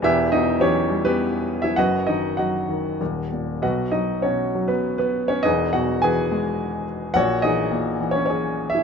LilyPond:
<<
  \new Staff \with { instrumentName = "Grand piano" } { \time 3/4 \key b \major \tempo 4 = 102 <e' g' b' e''>8 <dis' dis''>8 <cis' g' cis''>8. <b g' b'>4 <e' e''>16 | <fis' b' dis'' fis''>8 <dis' dis''>8 <fis' dis'' fis''>4. r8 | <fis' b' dis'' fis''>8 <dis' dis''>8 <cis' fis' cis''>8. <b b'>8 <b b'>8 <cis' cis''>16 | <dis' gis' b' dis''>8 <fis' fis''>8 <gis' b' gis''>4. r8 |
<fis' cis'' fis''>8 <dis' gis' dis''>4~ <dis' gis' dis''>16 <cis' cis''>16 <cis' gis' cis''>8. <e' e''>16 | }
  \new Staff \with { instrumentName = "Grand piano" } { \clef bass \time 3/4 \key b \major <e,, e,>8 b,8 e8 g4. | <fis,, fis,>8 dis8 fis8 dis8 <dis,, dis,>8 ais,8 | <b,, b,>8 fis8 b,8 fis4. | <e,, e,>8 b,8 e8 gis4. |
<ais,, ais,>8 e8 ais,8 e4. | }
>>